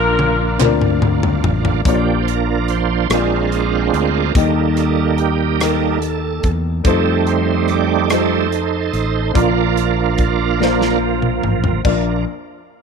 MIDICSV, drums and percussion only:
0, 0, Header, 1, 2, 480
1, 0, Start_track
1, 0, Key_signature, -2, "major"
1, 0, Tempo, 833333
1, 1066, Time_signature, 6, 3, 24, 8
1, 7384, End_track
2, 0, Start_track
2, 0, Title_t, "Drums"
2, 109, Note_on_c, 9, 48, 73
2, 166, Note_off_c, 9, 48, 0
2, 347, Note_on_c, 9, 39, 105
2, 348, Note_on_c, 9, 47, 88
2, 405, Note_off_c, 9, 39, 0
2, 406, Note_off_c, 9, 47, 0
2, 469, Note_on_c, 9, 45, 77
2, 527, Note_off_c, 9, 45, 0
2, 588, Note_on_c, 9, 45, 95
2, 645, Note_off_c, 9, 45, 0
2, 710, Note_on_c, 9, 43, 88
2, 767, Note_off_c, 9, 43, 0
2, 829, Note_on_c, 9, 43, 109
2, 887, Note_off_c, 9, 43, 0
2, 949, Note_on_c, 9, 43, 96
2, 1007, Note_off_c, 9, 43, 0
2, 1067, Note_on_c, 9, 36, 103
2, 1072, Note_on_c, 9, 42, 66
2, 1125, Note_off_c, 9, 36, 0
2, 1129, Note_off_c, 9, 42, 0
2, 1313, Note_on_c, 9, 42, 44
2, 1371, Note_off_c, 9, 42, 0
2, 1545, Note_on_c, 9, 42, 40
2, 1603, Note_off_c, 9, 42, 0
2, 1786, Note_on_c, 9, 42, 71
2, 1790, Note_on_c, 9, 37, 96
2, 1843, Note_off_c, 9, 42, 0
2, 1848, Note_off_c, 9, 37, 0
2, 2029, Note_on_c, 9, 42, 49
2, 2086, Note_off_c, 9, 42, 0
2, 2268, Note_on_c, 9, 42, 45
2, 2326, Note_off_c, 9, 42, 0
2, 2506, Note_on_c, 9, 36, 106
2, 2508, Note_on_c, 9, 42, 70
2, 2564, Note_off_c, 9, 36, 0
2, 2566, Note_off_c, 9, 42, 0
2, 2746, Note_on_c, 9, 42, 46
2, 2750, Note_on_c, 9, 37, 31
2, 2804, Note_off_c, 9, 42, 0
2, 2807, Note_off_c, 9, 37, 0
2, 2983, Note_on_c, 9, 42, 40
2, 3040, Note_off_c, 9, 42, 0
2, 3229, Note_on_c, 9, 42, 77
2, 3233, Note_on_c, 9, 37, 92
2, 3286, Note_off_c, 9, 42, 0
2, 3290, Note_off_c, 9, 37, 0
2, 3467, Note_on_c, 9, 42, 47
2, 3524, Note_off_c, 9, 42, 0
2, 3706, Note_on_c, 9, 42, 39
2, 3708, Note_on_c, 9, 36, 71
2, 3763, Note_off_c, 9, 42, 0
2, 3766, Note_off_c, 9, 36, 0
2, 3944, Note_on_c, 9, 42, 65
2, 3945, Note_on_c, 9, 36, 100
2, 4001, Note_off_c, 9, 42, 0
2, 4002, Note_off_c, 9, 36, 0
2, 4186, Note_on_c, 9, 42, 46
2, 4244, Note_off_c, 9, 42, 0
2, 4423, Note_on_c, 9, 42, 41
2, 4481, Note_off_c, 9, 42, 0
2, 4664, Note_on_c, 9, 42, 66
2, 4668, Note_on_c, 9, 37, 92
2, 4722, Note_off_c, 9, 42, 0
2, 4726, Note_off_c, 9, 37, 0
2, 4910, Note_on_c, 9, 42, 46
2, 4967, Note_off_c, 9, 42, 0
2, 5147, Note_on_c, 9, 42, 42
2, 5204, Note_off_c, 9, 42, 0
2, 5388, Note_on_c, 9, 36, 98
2, 5392, Note_on_c, 9, 42, 65
2, 5445, Note_off_c, 9, 36, 0
2, 5449, Note_off_c, 9, 42, 0
2, 5629, Note_on_c, 9, 42, 47
2, 5687, Note_off_c, 9, 42, 0
2, 5862, Note_on_c, 9, 42, 39
2, 5867, Note_on_c, 9, 36, 68
2, 5920, Note_off_c, 9, 42, 0
2, 5925, Note_off_c, 9, 36, 0
2, 6116, Note_on_c, 9, 38, 44
2, 6174, Note_off_c, 9, 38, 0
2, 6230, Note_on_c, 9, 38, 41
2, 6288, Note_off_c, 9, 38, 0
2, 6465, Note_on_c, 9, 47, 61
2, 6522, Note_off_c, 9, 47, 0
2, 6586, Note_on_c, 9, 45, 68
2, 6644, Note_off_c, 9, 45, 0
2, 6703, Note_on_c, 9, 43, 75
2, 6760, Note_off_c, 9, 43, 0
2, 6824, Note_on_c, 9, 55, 68
2, 6825, Note_on_c, 9, 36, 83
2, 6881, Note_off_c, 9, 55, 0
2, 6882, Note_off_c, 9, 36, 0
2, 7384, End_track
0, 0, End_of_file